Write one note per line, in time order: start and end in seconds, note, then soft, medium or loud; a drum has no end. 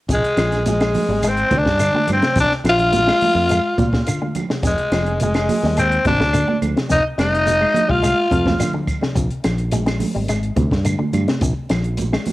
0.09 0.21 A#1 loud
0.09 0.33 C3 loud
0.09 0.64 G#4 medium
0.09 kick medium
0.09 closed hi-hat medium
0.09 shekere medium
0.13 0.64 G#3 loud
0.24 closed hi-hat soft
0.37 0.95 A#1 medium
0.37 0.61 F3 medium
0.37 snare medium
0.37 closed hi-hat medium
0.37 claves medium
0.37 shekere soft
0.52 snare soft
0.52 closed hi-hat soft
0.52 low conga medium
0.66 0.79 G#3 medium
0.66 1.29 G#4 medium
0.66 snare soft
0.66 closed hi-hat medium
0.66 high conga medium
0.66 shekere medium
0.71 1.30 G#3 medium
0.80 1.05 G#3 medium
0.80 snare medium
0.80 closed hi-hat soft
0.80 claves medium
0.94 open hi-hat medium
0.94 high conga loud
0.94 low conga loud
0.94 shekere soft
1.08 1.43 G#1 medium
1.08 1.21 G3 medium
1.23 1.47 G#3 medium
1.23 snare soft
1.23 closed hi-hat medium
1.23 claves medium
1.23 shekere loud
1.28 1.59 C4 loud
1.28 1.58 C5 medium
1.37 closed hi-hat soft
1.51 1.63 D2 loud
1.51 1.75 C3 medium
1.51 kick medium
1.51 closed hi-hat medium
1.51 high conga loud
1.51 shekere soft
1.56 2.11 D4 loud
1.56 2.11 D5 medium
1.66 1.89 G2 medium
1.66 kick medium
1.66 snare medium
1.79 1.92 D3 medium
1.79 closed hi-hat medium
1.79 claves medium
1.79 shekere loud
1.94 2.18 D3 medium
1.94 muted fingered electric bass stroke soft
1.94 high conga medium
2.07 2.20 G2 medium
2.07 closed hi-hat medium
2.07 high conga medium
2.07 low conga medium
2.07 claves medium
2.07 shekere soft
2.12 2.37 C4 loud
2.12 2.36 C5 medium
2.22 2.34 C3 medium
2.22 snare medium
2.22 closed hi-hat soft
2.36 2.48 A#1 loud
2.36 2.60 C3 medium
2.36 kick medium
2.36 closed hi-hat medium
2.36 shekere medium
2.40 2.52 D4 loud
2.40 2.52 D5 medium
2.51 muted fingered electric bass stroke soft
2.51 snare soft
2.64 3.10 A#1 medium
2.64 2.88 F3 medium
2.64 snare medium
2.64 closed hi-hat medium
2.64 claves medium
2.64 shekere soft
2.69 4.33 F4 loud
2.69 4.33 F5 medium
2.79 closed hi-hat soft
2.79 low conga medium
2.92 muted clean electric guitar stroke medium
2.92 closed hi-hat medium
2.92 high conga loud
2.92 shekere medium
3.08 3.31 G#3 medium
3.08 snare medium
3.08 claves medium
3.21 muted fingered electric bass stroke soft
3.21 open hi-hat medium
3.21 high conga medium
3.21 low conga medium
3.21 shekere soft
3.35 3.58 F2 medium
3.49 3.73 G#3 medium
3.49 closed hi-hat medium
3.49 claves medium
3.49 shekere medium
3.78 4.01 A#2 loud
3.78 4.01 C3 medium
3.78 kick medium
3.78 closed hi-hat medium
3.78 high conga loud
3.78 shekere soft
3.93 kick medium
3.93 snare medium
4.07 4.19 D3 medium
4.07 closed hi-hat medium
4.07 claves medium
4.07 shekere loud
4.22 4.45 D3 medium
4.22 high conga medium
4.35 closed hi-hat medium
4.35 high conga medium
4.35 low conga medium
4.35 claves medium
4.35 shekere soft
4.50 4.61 C3 medium
4.50 snare medium
4.63 4.75 F1 loud
4.63 4.87 C3 medium
4.63 5.18 G#3 medium
4.63 5.17 G#4 medium
4.63 kick loud
4.63 snare soft
4.63 closed hi-hat medium
4.63 shekere medium
4.78 closed hi-hat soft
4.92 5.49 F1 medium
4.92 5.16 F3 medium
4.92 snare medium
4.92 closed hi-hat medium
4.92 claves medium
4.92 shekere soft
5.06 closed hi-hat soft
5.06 low conga medium
5.20 5.74 G#3 medium
5.20 5.33 G#3 medium
5.20 5.74 G#4 medium
5.20 closed hi-hat medium
5.20 high conga medium
5.20 shekere medium
5.34 5.58 G#3 medium
5.34 snare medium
5.34 closed hi-hat soft
5.34 claves medium
5.49 open hi-hat medium
5.49 high conga loud
5.49 low conga medium
5.49 shekere soft
5.63 5.97 D#2 medium
5.63 5.76 G3 medium
5.63 snare soft
5.77 6.00 G#3 medium
5.77 6.04 C4 loud
5.77 6.05 C5 medium
5.77 closed hi-hat medium
5.77 claves medium
5.77 shekere medium
5.92 closed hi-hat soft
6.05 6.17 G#1 loud
6.05 6.29 C3 medium
6.05 6.59 D4 loud
6.05 6.59 D5 medium
6.05 kick medium
6.05 closed hi-hat medium
6.05 high conga loud
6.05 shekere soft
6.20 6.43 D2 medium
6.20 kick medium
6.20 snare medium
6.33 6.46 D3 medium
6.33 closed hi-hat medium
6.33 high conga medium
6.33 claves medium
6.33 shekere loud
6.48 6.71 D3 medium
6.48 muted fingered electric bass stroke soft
6.48 high conga medium
6.62 6.74 D2 medium
6.62 closed hi-hat medium
6.62 high conga medium
6.62 low conga medium
6.62 claves medium
6.62 shekere soft
6.76 6.88 C3 medium
6.76 snare medium
6.76 closed hi-hat soft
6.89 7.02 F1 loud
6.89 7.13 C3 medium
6.89 7.04 D#4 loud
6.89 kick loud
6.89 snare soft
6.89 closed hi-hat medium
6.89 shekere loud
6.95 7.07 D#5 medium
7.05 muted fingered electric bass stroke soft
7.18 7.64 F1 loud
7.18 7.41 G3 medium
7.18 7.91 D#4 loud
7.18 7.93 D#5 medium
7.18 snare medium
7.18 closed hi-hat medium
7.18 claves medium
7.18 shekere soft
7.35 closed hi-hat soft
7.46 7.58 G#3 medium
7.46 closed hi-hat medium
7.46 high conga medium
7.46 shekere medium
7.61 7.84 G#3 medium
7.61 claves medium
7.74 muted fingered electric bass stroke soft
7.74 closed hi-hat medium
7.74 high conga loud
7.74 low conga medium
7.74 shekere soft
7.89 8.12 C2 medium
7.89 8.00 G3 medium
7.89 8.74 F4 loud
7.89 8.75 F5 medium
7.89 kick medium
8.03 8.26 G#3 medium
8.03 snare soft
8.03 closed hi-hat medium
8.03 claves medium
8.03 shekere medium
8.31 8.54 F2 loud
8.31 8.55 C3 medium
8.31 kick medium
8.31 closed hi-hat medium
8.31 high conga medium
8.31 shekere soft
8.45 kick medium
8.45 snare medium
8.45 high conga loud
8.59 8.72 D3 medium
8.59 snare soft
8.59 closed hi-hat medium
8.59 low conga medium
8.59 claves medium
8.59 shekere loud
8.73 8.97 D3 medium
8.73 low conga loud
8.87 kick medium
8.87 closed hi-hat medium
8.87 claves medium
8.87 shekere soft
9.01 9.14 C3 medium
9.01 snare medium
9.01 low conga medium
9.15 9.28 A#1 loud
9.15 9.39 C3 medium
9.15 kick medium
9.15 closed hi-hat medium
9.15 shekere medium
9.31 closed hi-hat soft
9.44 10.02 A#1 medium
9.44 9.68 F3 medium
9.44 snare medium
9.44 closed hi-hat medium
9.44 claves medium
9.44 shekere soft
9.58 closed hi-hat soft
9.72 9.84 G#3 medium
9.72 closed hi-hat medium
9.72 high conga loud
9.72 shekere medium
9.86 10.10 G#3 medium
9.86 snare medium
9.86 closed hi-hat soft
9.86 claves medium
10.00 open hi-hat medium
10.00 high conga medium
10.00 low conga medium
10.00 shekere soft
10.15 10.50 G#1 medium
10.15 10.26 G3 medium
10.28 10.52 G#3 medium
10.28 snare soft
10.28 closed hi-hat medium
10.28 claves medium
10.28 shekere medium
10.43 closed hi-hat soft
10.56 10.69 D2 loud
10.56 10.80 C3 medium
10.56 kick medium
10.56 closed hi-hat medium
10.56 high conga loud
10.56 shekere soft
10.71 10.94 G2 medium
10.71 kick medium
10.71 snare medium
10.85 10.97 D3 medium
10.85 closed hi-hat medium
10.85 high conga medium
10.85 claves medium
10.85 shekere loud
10.99 11.23 D3 medium
10.99 muted fingered electric bass stroke soft
10.99 high conga medium
11.13 11.26 G2 medium
11.13 closed hi-hat medium
11.13 high conga medium
11.13 low conga medium
11.13 claves medium
11.13 shekere soft
11.28 11.40 C3 medium
11.28 snare medium
11.28 closed hi-hat soft
11.41 11.54 A#1 loud
11.41 11.66 C3 medium
11.41 kick medium
11.41 closed hi-hat medium
11.41 shekere medium
11.57 muted fingered electric bass stroke soft
11.69 12.16 A#1 medium
11.69 11.94 F3 medium
11.69 snare medium
11.69 closed hi-hat medium
11.69 claves medium
11.69 shekere soft
11.84 closed hi-hat soft
11.97 closed hi-hat medium
11.97 high conga medium
11.97 shekere medium
12.13 12.33 G#3 medium
12.13 snare medium
12.13 claves medium
12.26 muted fingered electric bass stroke soft
12.26 open hi-hat medium
12.26 high conga loud
12.26 low conga medium
12.26 shekere soft